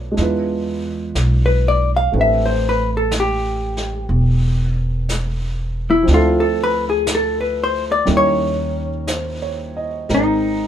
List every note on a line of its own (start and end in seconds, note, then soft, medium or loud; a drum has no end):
0.00 0.14 B1 medium
0.00 0.15 A3 medium
0.00 0.16 B3 soft
0.00 0.13 D4 medium
0.00 0.19 F4 soft
0.00 0.20 B4 medium
0.00 0.19 C#5 soft
0.00 0.38 D5 soft
0.12 2.11 G#3 medium
0.12 2.12 D4 soft
0.17 1.12 E2 medium
0.17 2.13 E4 soft
0.17 2.15 F4 soft
0.17 brush sweep soft
0.17 snare soft
0.22 2.16 B4 medium
1.15 2.10 B1 medium
1.15 brush sweep soft
1.15 snare soft
1.15 hi-hat pedal soft
1.46 1.80 B4 medium
1.68 1.90 D5 medium
1.96 2.12 F5 medium
2.12 4.06 A1 medium
2.12 6.07 A3 soft
2.12 6.04 C4 soft
2.12 6.07 D4 soft
2.12 6.08 G4 soft
2.12 brush sweep soft
2.17 6.09 B4 medium
2.17 2.50 E5 medium
2.46 2.79 C5 medium
2.69 2.90 B4 medium
2.97 3.12 A4 medium
3.11 brush sweep soft
3.11 snare medium
3.11 hi-hat pedal medium
3.20 4.77 G4 medium
3.77 snare soft
4.09 6.03 E1 medium
4.09 brush sweep soft
5.09 brush sweep soft
5.09 snare soft
5.09 hi-hat pedal soft
5.90 6.06 E4 medium
6.03 8.04 F3 medium
6.03 8.05 C4 medium
6.07 8.02 D2 medium
6.07 8.07 D4 medium
6.07 8.05 E4 medium
6.07 brush sweep soft
6.07 snare soft
6.13 6.44 F4 medium
6.13 8.09 A4 medium
6.40 6.74 A4 medium
6.64 6.85 B4 medium
6.90 7.06 G#4 medium
7.07 brush sweep soft
7.07 snare medium
7.07 hi-hat pedal medium
7.15 7.40 A4 medium
7.41 7.74 B4 medium
7.64 7.84 C5 medium
7.92 8.06 D5 medium
8.05 10.05 D#2 medium
8.05 10.08 G3 medium
8.05 10.08 C#4 soft
8.05 10.09 D#4 soft
8.05 10.09 E4 soft
8.05 10.09 A#4 medium
8.05 brush sweep soft
8.05 snare soft
8.17 9.94 C#5 medium
9.07 9.73 C5 soft
9.07 brush sweep soft
9.07 snare soft
9.07 hi-hat pedal soft
9.42 9.95 C#5 medium
9.77 10.28 D#5 medium
10.09 10.67 G#1 medium
10.09 10.67 G#3 soft
10.09 10.67 C4 soft
10.09 10.67 D#4 soft
10.09 10.67 A#4 medium
10.09 10.67 G5 soft
10.09 brush sweep soft
10.09 snare soft
10.14 10.67 D#4 medium